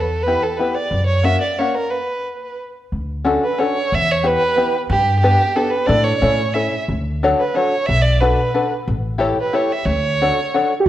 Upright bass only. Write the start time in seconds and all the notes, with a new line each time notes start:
Already playing: E2
0.91 F#2
2.92 D2
3.92 E2
4.90 G2
5.89 A2
6.22 A2
6.88 D2
7.89 B1
8.88 A1
9.86 D2